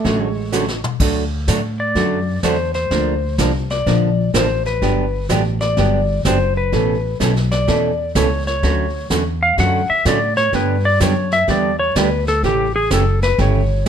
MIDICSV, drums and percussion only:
0, 0, Header, 1, 2, 480
1, 0, Start_track
1, 0, Key_signature, 2, "major"
1, 0, Tempo, 476190
1, 1009, Time_signature, 4, 2, 24, 8
1, 13994, End_track
2, 0, Start_track
2, 0, Title_t, "Drums"
2, 47, Note_on_c, 9, 36, 19
2, 48, Note_on_c, 9, 25, 52
2, 48, Note_on_c, 9, 38, 42
2, 148, Note_off_c, 9, 36, 0
2, 149, Note_off_c, 9, 38, 0
2, 528, Note_on_c, 9, 38, 46
2, 528, Note_on_c, 9, 44, 54
2, 629, Note_off_c, 9, 38, 0
2, 629, Note_off_c, 9, 44, 0
2, 688, Note_on_c, 9, 38, 58
2, 789, Note_off_c, 9, 38, 0
2, 846, Note_on_c, 9, 47, 72
2, 947, Note_off_c, 9, 47, 0
2, 1007, Note_off_c, 9, 25, 0
2, 1007, Note_on_c, 9, 25, 55
2, 1007, Note_on_c, 9, 36, 70
2, 1007, Note_on_c, 9, 38, 46
2, 1007, Note_on_c, 9, 49, 79
2, 1108, Note_off_c, 9, 36, 0
2, 1108, Note_off_c, 9, 38, 0
2, 1108, Note_off_c, 9, 49, 0
2, 1488, Note_on_c, 9, 38, 72
2, 1488, Note_on_c, 9, 44, 53
2, 1489, Note_on_c, 9, 36, 27
2, 1589, Note_off_c, 9, 36, 0
2, 1589, Note_off_c, 9, 38, 0
2, 1589, Note_off_c, 9, 44, 0
2, 1968, Note_off_c, 9, 25, 0
2, 1968, Note_on_c, 9, 25, 50
2, 1968, Note_on_c, 9, 36, 22
2, 1968, Note_on_c, 9, 38, 45
2, 2069, Note_off_c, 9, 36, 0
2, 2069, Note_off_c, 9, 38, 0
2, 2449, Note_on_c, 9, 36, 20
2, 2449, Note_on_c, 9, 38, 69
2, 2449, Note_on_c, 9, 44, 50
2, 2550, Note_off_c, 9, 36, 0
2, 2550, Note_off_c, 9, 38, 0
2, 2550, Note_off_c, 9, 44, 0
2, 2762, Note_on_c, 9, 38, 35
2, 2863, Note_off_c, 9, 38, 0
2, 2930, Note_on_c, 9, 36, 17
2, 2932, Note_off_c, 9, 25, 0
2, 2932, Note_on_c, 9, 25, 45
2, 2932, Note_on_c, 9, 38, 46
2, 3031, Note_off_c, 9, 36, 0
2, 3032, Note_off_c, 9, 38, 0
2, 3409, Note_on_c, 9, 38, 75
2, 3409, Note_on_c, 9, 44, 56
2, 3411, Note_on_c, 9, 36, 20
2, 3510, Note_off_c, 9, 38, 0
2, 3510, Note_off_c, 9, 44, 0
2, 3512, Note_off_c, 9, 36, 0
2, 3729, Note_on_c, 9, 38, 43
2, 3830, Note_off_c, 9, 38, 0
2, 3893, Note_on_c, 9, 36, 21
2, 3897, Note_off_c, 9, 25, 0
2, 3897, Note_on_c, 9, 25, 43
2, 3897, Note_on_c, 9, 38, 49
2, 3993, Note_off_c, 9, 36, 0
2, 3998, Note_off_c, 9, 38, 0
2, 4374, Note_on_c, 9, 36, 21
2, 4377, Note_on_c, 9, 38, 78
2, 4377, Note_on_c, 9, 44, 69
2, 4475, Note_off_c, 9, 36, 0
2, 4478, Note_off_c, 9, 38, 0
2, 4478, Note_off_c, 9, 44, 0
2, 4691, Note_on_c, 9, 38, 35
2, 4792, Note_off_c, 9, 38, 0
2, 4855, Note_on_c, 9, 36, 18
2, 4857, Note_off_c, 9, 25, 0
2, 4857, Note_on_c, 9, 25, 46
2, 4857, Note_on_c, 9, 38, 45
2, 4956, Note_off_c, 9, 36, 0
2, 4958, Note_off_c, 9, 38, 0
2, 5334, Note_on_c, 9, 38, 71
2, 5334, Note_on_c, 9, 44, 57
2, 5335, Note_on_c, 9, 36, 26
2, 5435, Note_off_c, 9, 38, 0
2, 5435, Note_off_c, 9, 44, 0
2, 5436, Note_off_c, 9, 36, 0
2, 5650, Note_on_c, 9, 38, 43
2, 5750, Note_off_c, 9, 38, 0
2, 5813, Note_off_c, 9, 25, 0
2, 5813, Note_on_c, 9, 25, 44
2, 5813, Note_on_c, 9, 38, 47
2, 5816, Note_on_c, 9, 36, 24
2, 5914, Note_off_c, 9, 38, 0
2, 5917, Note_off_c, 9, 36, 0
2, 6297, Note_on_c, 9, 36, 18
2, 6297, Note_on_c, 9, 38, 68
2, 6297, Note_on_c, 9, 44, 62
2, 6397, Note_off_c, 9, 36, 0
2, 6398, Note_off_c, 9, 38, 0
2, 6398, Note_off_c, 9, 44, 0
2, 6778, Note_on_c, 9, 36, 23
2, 6779, Note_off_c, 9, 25, 0
2, 6779, Note_on_c, 9, 25, 53
2, 6779, Note_on_c, 9, 38, 47
2, 6879, Note_off_c, 9, 36, 0
2, 6880, Note_off_c, 9, 38, 0
2, 7258, Note_on_c, 9, 36, 21
2, 7262, Note_on_c, 9, 38, 69
2, 7262, Note_on_c, 9, 44, 60
2, 7359, Note_off_c, 9, 36, 0
2, 7363, Note_off_c, 9, 38, 0
2, 7363, Note_off_c, 9, 44, 0
2, 7419, Note_on_c, 9, 38, 27
2, 7520, Note_off_c, 9, 38, 0
2, 7572, Note_on_c, 9, 38, 41
2, 7579, Note_off_c, 9, 38, 0
2, 7579, Note_on_c, 9, 38, 52
2, 7679, Note_off_c, 9, 38, 0
2, 7738, Note_on_c, 9, 36, 26
2, 7740, Note_off_c, 9, 25, 0
2, 7740, Note_on_c, 9, 25, 53
2, 7740, Note_on_c, 9, 38, 47
2, 7839, Note_off_c, 9, 36, 0
2, 7841, Note_off_c, 9, 38, 0
2, 8217, Note_on_c, 9, 36, 24
2, 8217, Note_on_c, 9, 38, 70
2, 8217, Note_on_c, 9, 44, 66
2, 8318, Note_off_c, 9, 36, 0
2, 8318, Note_off_c, 9, 38, 0
2, 8318, Note_off_c, 9, 44, 0
2, 8534, Note_on_c, 9, 38, 39
2, 8634, Note_off_c, 9, 38, 0
2, 8697, Note_on_c, 9, 36, 24
2, 8699, Note_off_c, 9, 25, 0
2, 8699, Note_on_c, 9, 25, 47
2, 8699, Note_on_c, 9, 38, 44
2, 8798, Note_off_c, 9, 36, 0
2, 8800, Note_off_c, 9, 38, 0
2, 9174, Note_on_c, 9, 38, 73
2, 9174, Note_on_c, 9, 44, 60
2, 9176, Note_on_c, 9, 36, 24
2, 9275, Note_off_c, 9, 38, 0
2, 9275, Note_off_c, 9, 44, 0
2, 9276, Note_off_c, 9, 36, 0
2, 9654, Note_off_c, 9, 25, 0
2, 9654, Note_on_c, 9, 25, 50
2, 9654, Note_on_c, 9, 36, 24
2, 9654, Note_on_c, 9, 38, 47
2, 9755, Note_off_c, 9, 36, 0
2, 9755, Note_off_c, 9, 38, 0
2, 10134, Note_on_c, 9, 36, 19
2, 10134, Note_on_c, 9, 38, 72
2, 10134, Note_on_c, 9, 44, 63
2, 10234, Note_off_c, 9, 36, 0
2, 10235, Note_off_c, 9, 38, 0
2, 10235, Note_off_c, 9, 44, 0
2, 10448, Note_on_c, 9, 38, 39
2, 10548, Note_off_c, 9, 38, 0
2, 10611, Note_off_c, 9, 25, 0
2, 10611, Note_on_c, 9, 25, 52
2, 10611, Note_on_c, 9, 38, 44
2, 10612, Note_on_c, 9, 36, 23
2, 10712, Note_off_c, 9, 38, 0
2, 10713, Note_off_c, 9, 36, 0
2, 11091, Note_on_c, 9, 38, 72
2, 11091, Note_on_c, 9, 44, 66
2, 11092, Note_on_c, 9, 36, 26
2, 11192, Note_off_c, 9, 38, 0
2, 11192, Note_off_c, 9, 44, 0
2, 11193, Note_off_c, 9, 36, 0
2, 11405, Note_on_c, 9, 38, 44
2, 11506, Note_off_c, 9, 38, 0
2, 11571, Note_on_c, 9, 36, 22
2, 11573, Note_off_c, 9, 25, 0
2, 11573, Note_on_c, 9, 25, 54
2, 11573, Note_on_c, 9, 38, 47
2, 11672, Note_off_c, 9, 36, 0
2, 11674, Note_off_c, 9, 38, 0
2, 12052, Note_on_c, 9, 36, 26
2, 12053, Note_on_c, 9, 38, 80
2, 12053, Note_on_c, 9, 44, 61
2, 12152, Note_off_c, 9, 36, 0
2, 12153, Note_off_c, 9, 38, 0
2, 12153, Note_off_c, 9, 44, 0
2, 12367, Note_on_c, 9, 38, 37
2, 12468, Note_off_c, 9, 38, 0
2, 12532, Note_on_c, 9, 36, 24
2, 12536, Note_off_c, 9, 25, 0
2, 12536, Note_on_c, 9, 25, 53
2, 12536, Note_on_c, 9, 38, 44
2, 12633, Note_off_c, 9, 36, 0
2, 12637, Note_off_c, 9, 38, 0
2, 13009, Note_on_c, 9, 38, 77
2, 13009, Note_on_c, 9, 44, 62
2, 13011, Note_on_c, 9, 36, 26
2, 13110, Note_off_c, 9, 38, 0
2, 13110, Note_off_c, 9, 44, 0
2, 13111, Note_off_c, 9, 36, 0
2, 13328, Note_on_c, 9, 38, 45
2, 13429, Note_off_c, 9, 38, 0
2, 13491, Note_off_c, 9, 25, 0
2, 13491, Note_on_c, 9, 25, 58
2, 13491, Note_on_c, 9, 36, 27
2, 13491, Note_on_c, 9, 38, 47
2, 13591, Note_off_c, 9, 36, 0
2, 13592, Note_off_c, 9, 38, 0
2, 13994, Note_off_c, 9, 25, 0
2, 13994, End_track
0, 0, End_of_file